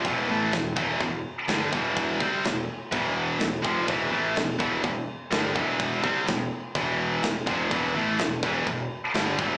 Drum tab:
CC |x-x-x-x-|x-x-x-x-|x-x-x-x-|x-x-x-x-|
SD |--o---o-|--o---o-|--o---o-|--o---o-|
BD |o--oo--o|oo--o--o|o--oo--o|oo--o--o|

CC |x-x-x-x-|
SD |--o---o-|
BD |o--oo--o|